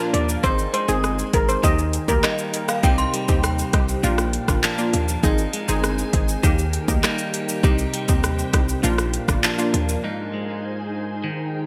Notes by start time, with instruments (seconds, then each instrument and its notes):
Already playing: clean electric guitar A#2 F3 A#3 D4, ambient pad D4 F4 A#4 F5
0.00 synth pluck A#3 D4 F4
0.14 808-style bass D#2, steel pan D5, closed hi-hat, shaker
0.29 shaker, maracas
0.43 808-style bass G#1, synth pluck C4 D#4 G#4, ambient pad D#4 G#4 C5 G#5, clean electric guitar D#4, steel pan C5, kick, shaker, maracas
0.58 shaker, maracas
0.74 clean electric guitar G#3, steel pan C5, closed hi-hat, shaker
0.88 808-style bass G1, synth pluck C4 D#4 G#4, steel pan G#4, shaker, maracas
1.04 cross-stick, maracas, shaker
1.19 shaker, maracas
1.33 808-style bass G#1, synth pluck C4 D#4 G#4, steel pan A#4, kick, closed hi-hat, shaker, maracas
1.49 steel pan C5, maracas, shaker
1.63 808-style bass D#2, clean electric guitar D#3, synth pluck A#3 D#4 G4, ambient pad G4 A#4 G5, steel pan D#5, kick, shaker, maracas
1.79 maracas, shaker
1.93 closed hi-hat, shaker, maracas
2.08 808-style bass D2, synth pluck A#3 D#4 G4, steel pan A#4, kick, shaker, maracas
2.23 clean electric guitar G3 A#3 D#4, synth bell D#5, cross-stick, clap, shaker, maracas
2.38 maracas, shaker
2.54 closed hi-hat, maracas, shaker
2.68 synth bell F5, cross-stick, shaker, maracas
2.83 808-style bass C2, clean electric guitar C3 D#4, synth pluck C4 D#4 G4, ambient pad C5, synth bell G5, kick, shaker, maracas
2.98 synth bell C6, shaker, maracas
3.14 clean electric guitar G3, closed hi-hat, shaker
3.28 808-style bass D#2, synth pluck C4 D#4 G4, kick, shaker, maracas
3.43 synth bell G5, cross-stick, shaker, maracas
3.59 shaker, maracas
3.73 808-style bass C2, synth pluck C4 D#4 G4, kick, cross-stick, closed hi-hat, shaker
3.88 maracas, shaker
4.03 808-style bass A#1, clean electric guitar A#2, synth pluck A#3 D4 F4, ambient pad D4 F4 A#4 F5, shaker, maracas
4.18 cross-stick, maracas, shaker
4.33 closed hi-hat, shaker
4.48 808-style bass G1, synth pluck A#3 D4 F4, kick, cross-stick, shaker, maracas
4.63 clean electric guitar F3 A#3 D4, clap, shaker, maracas
4.78 synth pluck A#3 D4 F4, shaker, maracas
4.94 808-style bass D#2, closed hi-hat, shaker
5.08 shaker, maracas
5.23 808-style bass G#1, synth pluck C4 D#4 G#4, ambient pad D#4 G#4 C5 G#5, clean electric guitar D#4, kick, shaker, maracas
5.38 shaker, maracas
5.53 clean electric guitar G#3, closed hi-hat, shaker
5.68 808-style bass G1, synth pluck C4 D#4 G#4, shaker, maracas
5.84 cross-stick, shaker, maracas
5.98 shaker, maracas
6.13 808-style bass G#1, synth pluck C4 D#4 G#4, kick, closed hi-hat, shaker
6.28 maracas, shaker
6.43 808-style bass D#2, clean electric guitar D#3, synth pluck A#3 D#4 G4, ambient pad G4 A#4 G5, kick, shaker, maracas
6.58 maracas, shaker
6.73 closed hi-hat, shaker
6.88 808-style bass D2, synth pluck A#3 D#4 G4, kick, maracas, shaker
7.03 clean electric guitar G3 A#3 D#4, cross-stick, clap, maracas, shaker
7.18 maracas, shaker
7.34 closed hi-hat, shaker
7.49 shaker, maracas
7.63 808-style bass C2, clean electric guitar C3 D#4, synth pluck C4 D#4 G4, ambient pad C5, kick, shaker, maracas
7.78 shaker, maracas
7.94 clean electric guitar G3, closed hi-hat, shaker
8.08 808-style bass D#2, synth pluck C4 D#4 G4, kick, shaker, maracas
8.24 cross-stick, shaker, maracas
8.39 shaker, maracas
8.53 808-style bass C2, synth pluck C4 D#4 G4, kick, cross-stick, closed hi-hat, shaker
8.69 maracas, shaker
8.83 808-style bass A#1, clean electric guitar A#2, synth pluck A#3 D4 F4, ambient pad D4 F4 A#4 F5, shaker, maracas
8.98 cross-stick, maracas, shaker
9.14 closed hi-hat, shaker
9.28 808-style bass G1, synth pluck A#3 D4 F4, kick, cross-stick, maracas, shaker
9.43 clean electric guitar F3 A#3 D4, clap, maracas, shaker
9.58 synth pluck A#3 D4 F4, maracas, shaker
9.74 808-style bass D#2, closed hi-hat, shaker
9.89 maracas, shaker
10.04 clean electric guitar G#2 D#4, ambient pad D#4 G#4 C5 G#5
10.34 clean electric guitar G#3
11.24 clean electric guitar D#3, ambient pad G4 A#4 G5